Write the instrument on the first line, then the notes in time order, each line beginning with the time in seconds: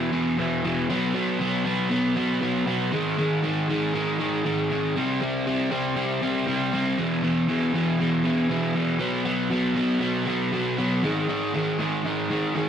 overdriven electric guitar
Already playing: E2 B2 E3
0.12 E2 B2 E3
0.38 E2 B2 E3
0.64 E2 B2 E3
0.89 B2 F#3 B3
1.14 B2 F#3 B3
1.39 B2 F#3 B3
1.65 B2 F#3 B3
1.90 B2 F#3 B3
2.16 B2 F#3 B3
2.41 B2 F#3 B3
2.66 B2 F#3 B3
2.92 G#2 D#3 G#3
3.17 G#2 D#3 G#3
3.43 G#2 D#3 G#3
3.69 G#2 D#3 G#3
3.94 G#2 D#3 G#3
4.19 G#2 D#3 G#3
4.45 G#2 D#3 G#3
4.71 G#2 D#3 G#3
4.96 C3 G3 C4
5.21 C3 G3 C4
5.46 C3 G3 C4
5.70 C3 G3 C4
5.96 C3 G3 C4
6.22 C3 G3 C4
6.46 C3 G3 C4
6.73 C3 G3 C4
6.97 E2 B2 E3
7.23 E2 B2 E3
7.48 E2 B2 E3
7.74 E2 B2 E3
7.99 E2 B2 E3
8.24 E2 B2 E3
8.50 E2 B2 E3
8.75 E2 B2 E3
8.99 B2 F#3 B3
9.25 B2 F#3 B3
9.50 B2 F#3 B3
9.76 B2 F#3 B3
10.00 B2 F#3 B3
10.27 B2 F#3 B3
10.53 B2 F#3 B3
10.78 B2 F#3 B3
11.03 G#2 D#3 G#3
11.28 G#2 D#3 G#3
11.54 G#2 D#3 G#3
11.78 G#2 D#3 G#3
12.04 G#2 D#3 G#3
12.29 G#2 D#3 G#3
12.55 G#2 D#3 G#3